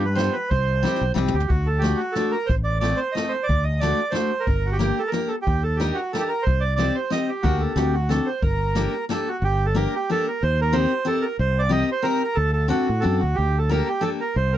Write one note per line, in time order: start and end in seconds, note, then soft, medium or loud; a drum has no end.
0.00 0.28 G2 loud
0.05 0.17 B4 medium
0.15 0.34 G3 medium
0.15 0.35 B3 medium
0.15 0.35 D4 medium
0.15 0.35 F4 medium
0.15 0.35 C5 loud
0.15 snare medium
0.15 closed hi-hat soft
0.32 0.50 B4 medium
0.50 0.84 C2 medium
0.50 1.12 C5 medium
0.50 kick medium
0.50 closed hi-hat soft
0.83 1.01 G3 medium
0.83 1.02 C4 medium
0.83 1.02 D#4 medium
0.83 1.02 G4 medium
0.83 snare soft
0.96 snare soft
1.01 1.15 B1 medium
1.14 1.33 C2 medium
1.14 1.34 G3 medium
1.14 1.34 C4 medium
1.14 1.34 D#4 medium
1.14 1.35 G4 medium
1.14 mid tom soft
1.28 mid tom medium
1.34 1.48 D2 medium
1.34 1.50 G4 medium
1.40 floor tom medium
1.48 1.93 D2 medium
1.48 1.68 F#4 medium
1.48 kick medium
1.48 closed hi-hat soft
1.66 1.83 A4 medium
1.79 2.01 A3 medium
1.79 2.01 D4 soft
1.79 2.00 G4 medium
1.83 2.01 F#4 medium
1.83 2.02 A4 medium
1.83 snare medium
1.83 closed hi-hat soft
1.97 2.15 F#4 medium
2.12 2.34 A3 medium
2.12 2.33 A4 medium
2.12 snare medium
2.12 closed hi-hat soft
2.16 2.34 D4 soft
2.16 2.35 F#4 soft
2.16 2.35 A4 medium
2.32 2.49 A#4 medium
2.46 2.92 A1 medium
2.46 2.55 C5 medium
2.46 kick medium
2.46 closed hi-hat soft
2.64 2.78 D5 medium
2.80 3.00 A3 medium
2.80 3.00 C4 medium
2.80 3.00 D#4 medium
2.80 3.00 A4 medium
2.80 3.00 D5 medium
2.80 snare medium
2.80 closed hi-hat soft
2.97 3.14 C5 medium
3.12 3.33 A3 medium
3.12 3.33 C4 soft
3.12 3.32 D#5 medium
3.17 3.34 D#4 soft
3.17 3.34 A4 soft
3.17 snare medium
3.17 closed hi-hat soft
3.29 3.47 C5 medium
3.43 3.64 D5 medium
3.49 3.92 D2 medium
3.49 kick medium
3.49 closed hi-hat soft
3.64 3.80 D#5 medium
3.79 3.99 A3 medium
3.79 3.99 D4 medium
3.79 4.00 F#4 medium
3.79 4.00 A4 medium
3.79 4.14 D5 medium
3.79 snare soft
3.79 closed hi-hat soft
4.10 4.31 A3 medium
4.10 4.31 D4 soft
4.10 4.31 F#4 soft
4.10 4.31 A4 soft
4.10 4.46 C5 medium
4.14 snare medium
4.14 closed hi-hat soft
4.40 4.70 A#4 medium
4.47 4.91 G1 medium
4.47 kick medium
4.47 closed hi-hat soft
4.66 4.77 F#4 medium
4.72 5.03 G4 medium
4.79 4.98 A#3 medium
4.79 4.98 D4 medium
4.79 4.98 G4 medium
4.79 4.98 A#4 medium
4.79 snare medium
4.79 closed hi-hat soft
4.99 5.10 A4 medium
5.07 5.29 A#4 medium
5.12 5.31 A#3 medium
5.12 5.31 D4 soft
5.12 5.31 G4 soft
5.12 5.32 A#4 medium
5.12 snare medium
5.12 closed hi-hat soft
5.28 5.36 A4 medium
5.42 5.63 G4 medium
5.46 5.90 D#2 medium
5.46 kick medium
5.46 closed hi-hat soft
5.63 5.80 A4 medium
5.76 5.98 D4 medium
5.76 5.98 D#4 medium
5.76 5.97 G4 medium
5.76 snare medium
5.76 closed hi-hat soft
5.81 5.99 G4 soft
5.81 5.99 A#4 medium
5.94 6.12 F#4 medium
6.13 6.31 D4 soft
6.13 6.32 D#4 medium
6.13 6.32 G4 medium
6.13 6.17 A4 medium
6.13 6.32 A#4 medium
6.13 snare medium
6.13 closed hi-hat soft
6.19 6.23 G4 medium
6.19 6.29 A4 medium
6.28 6.44 A#4 medium
6.42 6.63 C5 medium
6.47 6.89 C2 medium
6.47 kick medium
6.47 closed hi-hat soft
6.60 6.74 D5 medium
6.76 6.96 C4 medium
6.76 6.97 D#4 medium
6.76 6.97 G4 medium
6.76 6.97 C5 medium
6.76 6.96 D5 medium
6.76 snare medium
6.76 closed hi-hat soft
6.95 7.11 C5 medium
7.10 7.29 C4 medium
7.10 7.29 D#4 soft
7.10 7.30 G4 medium
7.10 7.30 C5 soft
7.10 7.30 D#5 medium
7.10 snare medium
7.10 closed hi-hat soft
7.29 7.45 G4 medium
7.43 7.66 D2 medium
7.43 7.71 A#3 medium
7.43 7.71 D4 medium
7.43 7.62 F#4 medium
7.43 7.71 G4 medium
7.43 7.72 A#4 medium
7.43 kick medium
7.43 closed hi-hat soft
7.60 7.77 A4 medium
7.76 8.19 D2 loud
7.76 7.94 C4 medium
7.76 7.95 D4 medium
7.76 7.95 F#4 medium
7.76 7.95 G4 medium
7.76 7.95 A4 medium
7.76 snare medium
7.76 closed hi-hat soft
7.93 8.10 F#4 medium
8.09 8.27 C4 medium
8.09 8.28 D4 medium
8.09 8.28 F#4 medium
8.09 8.28 A4 medium
8.09 8.29 A4 medium
8.09 snare medium
8.09 closed hi-hat soft
8.26 8.42 C5 medium
8.42 8.86 G1 medium
8.42 9.05 A#4 medium
8.42 kick medium
8.42 closed hi-hat soft
8.75 8.94 A#3 medium
8.75 8.94 D4 medium
8.75 8.94 G4 medium
8.75 8.94 A4 medium
8.75 snare medium
8.75 closed hi-hat soft
9.09 9.27 A#3 medium
9.09 9.28 D4 medium
9.09 9.28 G4 medium
9.09 9.29 A4 medium
9.09 9.28 A4 medium
9.09 snare medium
9.09 closed hi-hat soft
9.28 9.43 F#4 medium
9.42 9.85 G1 medium
9.42 9.66 G4 medium
9.66 9.77 A4 medium
9.75 9.93 A#3 medium
9.75 9.94 D4 medium
9.75 9.94 G4 medium
9.75 9.95 A#4 medium
9.75 9.94 A#4 medium
9.95 10.10 G4 medium
10.10 10.27 A#3 medium
10.10 10.27 D4 medium
10.10 10.27 G4 soft
10.10 10.27 A4 loud
10.10 10.28 A#4 medium
10.28 10.43 A#4 medium
10.43 10.85 D#2 loud
10.43 10.60 C5 loud
10.62 10.76 A#4 medium
10.73 10.91 C4 medium
10.73 10.91 D#4 medium
10.73 10.92 G4 medium
10.73 10.91 A#4 medium
10.73 11.07 C5 loud
11.05 11.23 C4 medium
11.05 11.24 D#4 medium
11.05 11.24 G4 medium
11.05 11.25 A4 loud
11.05 11.24 A#4 medium
11.22 11.37 A#4 medium
11.39 11.82 C2 loud
11.39 11.62 C5 medium
11.59 11.71 D5 medium
11.69 11.88 C4 medium
11.69 11.88 D#4 medium
11.69 11.89 G4 medium
11.69 11.89 A#4 medium
11.69 11.90 D#5 loud
11.92 12.06 C5 medium
12.02 12.21 C4 medium
12.02 12.22 D#4 medium
12.02 12.22 G4 soft
12.02 12.23 A#4 loud
12.02 12.22 A#4 medium
12.24 12.37 A#4 medium
12.35 12.70 D2 medium
12.35 12.51 A4 loud
12.53 12.68 A4 medium
12.68 12.87 C4 medium
12.68 12.87 D4 medium
12.68 12.88 F#4 medium
12.68 13.04 F#4 medium
12.68 12.88 A4 medium
12.89 13.02 A2 medium
13.00 13.21 C4 medium
13.00 13.21 D4 soft
13.00 13.22 F#4 soft
13.00 13.20 A4 medium
13.00 13.22 A4 medium
13.05 13.21 F#2 medium
13.19 13.36 D2 medium
13.19 13.36 F#4 medium
13.35 13.81 D2 loud
13.35 13.59 G4 medium
13.58 13.70 A4 medium
13.69 13.87 A#3 medium
13.69 13.88 D4 soft
13.69 13.88 G4 medium
13.69 13.88 A4 medium
13.69 13.88 A#4 medium
13.88 14.03 G4 medium
14.01 14.19 A#3 medium
14.01 14.19 D4 soft
14.01 14.20 G4 medium
14.01 14.10 A4 medium
14.01 14.20 A4 medium
14.21 14.36 A#4 medium
14.36 14.58 C2 loud
14.36 14.54 C5 medium
14.53 14.58 A#4 medium